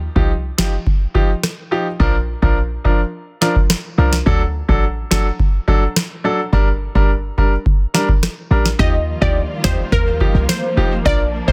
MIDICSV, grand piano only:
0, 0, Header, 1, 2, 480
1, 0, Start_track
1, 0, Tempo, 566038
1, 1696, Time_signature, 4, 2, 24, 8
1, 9771, End_track
2, 0, Start_track
2, 0, Title_t, "Grand piano"
2, 0, Program_c, 0, 0
2, 132, Note_on_c, 0, 53, 75
2, 135, Note_on_c, 0, 63, 73
2, 137, Note_on_c, 0, 67, 82
2, 252, Note_off_c, 0, 53, 0
2, 253, Note_off_c, 0, 63, 0
2, 254, Note_off_c, 0, 67, 0
2, 490, Note_on_c, 0, 53, 70
2, 493, Note_on_c, 0, 63, 65
2, 495, Note_on_c, 0, 67, 84
2, 611, Note_off_c, 0, 53, 0
2, 612, Note_off_c, 0, 63, 0
2, 613, Note_off_c, 0, 67, 0
2, 970, Note_on_c, 0, 53, 80
2, 972, Note_on_c, 0, 63, 68
2, 975, Note_on_c, 0, 67, 86
2, 1091, Note_off_c, 0, 53, 0
2, 1092, Note_off_c, 0, 63, 0
2, 1093, Note_off_c, 0, 67, 0
2, 1452, Note_on_c, 0, 53, 75
2, 1455, Note_on_c, 0, 63, 72
2, 1457, Note_on_c, 0, 67, 87
2, 1571, Note_off_c, 0, 53, 0
2, 1573, Note_off_c, 0, 63, 0
2, 1574, Note_off_c, 0, 67, 0
2, 1693, Note_on_c, 0, 53, 96
2, 1695, Note_on_c, 0, 62, 87
2, 1698, Note_on_c, 0, 70, 103
2, 1812, Note_off_c, 0, 53, 0
2, 1813, Note_off_c, 0, 62, 0
2, 1814, Note_off_c, 0, 70, 0
2, 2054, Note_on_c, 0, 53, 74
2, 2055, Note_on_c, 0, 62, 70
2, 2058, Note_on_c, 0, 70, 84
2, 2172, Note_off_c, 0, 53, 0
2, 2173, Note_off_c, 0, 62, 0
2, 2174, Note_off_c, 0, 70, 0
2, 2412, Note_on_c, 0, 53, 71
2, 2415, Note_on_c, 0, 62, 68
2, 2417, Note_on_c, 0, 70, 80
2, 2532, Note_off_c, 0, 53, 0
2, 2533, Note_off_c, 0, 62, 0
2, 2534, Note_off_c, 0, 70, 0
2, 2894, Note_on_c, 0, 53, 79
2, 2897, Note_on_c, 0, 62, 72
2, 2900, Note_on_c, 0, 70, 85
2, 3013, Note_off_c, 0, 53, 0
2, 3014, Note_off_c, 0, 62, 0
2, 3015, Note_off_c, 0, 70, 0
2, 3374, Note_on_c, 0, 53, 76
2, 3377, Note_on_c, 0, 62, 69
2, 3379, Note_on_c, 0, 70, 88
2, 3492, Note_off_c, 0, 53, 0
2, 3494, Note_off_c, 0, 62, 0
2, 3495, Note_off_c, 0, 70, 0
2, 3613, Note_on_c, 0, 54, 91
2, 3615, Note_on_c, 0, 62, 86
2, 3618, Note_on_c, 0, 69, 102
2, 3732, Note_off_c, 0, 54, 0
2, 3733, Note_off_c, 0, 62, 0
2, 3734, Note_off_c, 0, 69, 0
2, 3973, Note_on_c, 0, 54, 74
2, 3975, Note_on_c, 0, 62, 73
2, 3977, Note_on_c, 0, 69, 86
2, 4092, Note_off_c, 0, 54, 0
2, 4093, Note_off_c, 0, 62, 0
2, 4094, Note_off_c, 0, 69, 0
2, 4331, Note_on_c, 0, 54, 75
2, 4334, Note_on_c, 0, 62, 67
2, 4335, Note_on_c, 0, 69, 85
2, 4451, Note_off_c, 0, 54, 0
2, 4452, Note_off_c, 0, 62, 0
2, 4453, Note_off_c, 0, 69, 0
2, 4814, Note_on_c, 0, 54, 76
2, 4816, Note_on_c, 0, 62, 73
2, 4818, Note_on_c, 0, 69, 86
2, 4932, Note_off_c, 0, 54, 0
2, 4933, Note_off_c, 0, 62, 0
2, 4934, Note_off_c, 0, 69, 0
2, 5293, Note_on_c, 0, 54, 77
2, 5296, Note_on_c, 0, 62, 68
2, 5299, Note_on_c, 0, 69, 86
2, 5412, Note_off_c, 0, 54, 0
2, 5413, Note_off_c, 0, 62, 0
2, 5415, Note_off_c, 0, 69, 0
2, 5533, Note_on_c, 0, 55, 93
2, 5537, Note_on_c, 0, 62, 86
2, 5538, Note_on_c, 0, 70, 101
2, 5652, Note_off_c, 0, 55, 0
2, 5654, Note_off_c, 0, 62, 0
2, 5655, Note_off_c, 0, 70, 0
2, 5894, Note_on_c, 0, 55, 80
2, 5896, Note_on_c, 0, 62, 72
2, 5899, Note_on_c, 0, 70, 89
2, 6012, Note_off_c, 0, 55, 0
2, 6014, Note_off_c, 0, 62, 0
2, 6015, Note_off_c, 0, 70, 0
2, 6255, Note_on_c, 0, 55, 72
2, 6258, Note_on_c, 0, 62, 66
2, 6260, Note_on_c, 0, 70, 84
2, 6373, Note_off_c, 0, 55, 0
2, 6374, Note_off_c, 0, 62, 0
2, 6376, Note_off_c, 0, 70, 0
2, 6732, Note_on_c, 0, 55, 76
2, 6735, Note_on_c, 0, 62, 71
2, 6738, Note_on_c, 0, 70, 83
2, 6851, Note_off_c, 0, 55, 0
2, 6853, Note_off_c, 0, 62, 0
2, 6854, Note_off_c, 0, 70, 0
2, 7213, Note_on_c, 0, 55, 78
2, 7215, Note_on_c, 0, 62, 69
2, 7218, Note_on_c, 0, 70, 82
2, 7332, Note_off_c, 0, 55, 0
2, 7333, Note_off_c, 0, 62, 0
2, 7335, Note_off_c, 0, 70, 0
2, 7452, Note_on_c, 0, 53, 93
2, 7456, Note_on_c, 0, 63, 86
2, 7458, Note_on_c, 0, 67, 99
2, 7572, Note_off_c, 0, 53, 0
2, 7573, Note_off_c, 0, 63, 0
2, 7575, Note_off_c, 0, 67, 0
2, 7812, Note_on_c, 0, 53, 77
2, 7815, Note_on_c, 0, 63, 73
2, 7818, Note_on_c, 0, 67, 88
2, 7932, Note_off_c, 0, 53, 0
2, 7933, Note_off_c, 0, 63, 0
2, 7934, Note_off_c, 0, 67, 0
2, 8173, Note_on_c, 0, 53, 74
2, 8176, Note_on_c, 0, 63, 67
2, 8178, Note_on_c, 0, 67, 81
2, 8292, Note_off_c, 0, 53, 0
2, 8293, Note_off_c, 0, 63, 0
2, 8294, Note_off_c, 0, 67, 0
2, 8652, Note_on_c, 0, 53, 77
2, 8655, Note_on_c, 0, 63, 70
2, 8657, Note_on_c, 0, 67, 86
2, 8772, Note_off_c, 0, 53, 0
2, 8773, Note_off_c, 0, 63, 0
2, 8774, Note_off_c, 0, 67, 0
2, 9130, Note_on_c, 0, 53, 77
2, 9133, Note_on_c, 0, 63, 73
2, 9136, Note_on_c, 0, 67, 87
2, 9251, Note_off_c, 0, 53, 0
2, 9252, Note_off_c, 0, 63, 0
2, 9254, Note_off_c, 0, 67, 0
2, 9372, Note_on_c, 0, 53, 96
2, 9374, Note_on_c, 0, 62, 86
2, 9377, Note_on_c, 0, 70, 106
2, 9491, Note_off_c, 0, 53, 0
2, 9493, Note_off_c, 0, 62, 0
2, 9494, Note_off_c, 0, 70, 0
2, 9731, Note_on_c, 0, 53, 77
2, 9733, Note_on_c, 0, 62, 68
2, 9737, Note_on_c, 0, 70, 89
2, 9771, Note_off_c, 0, 53, 0
2, 9771, Note_off_c, 0, 62, 0
2, 9771, Note_off_c, 0, 70, 0
2, 9771, End_track
0, 0, End_of_file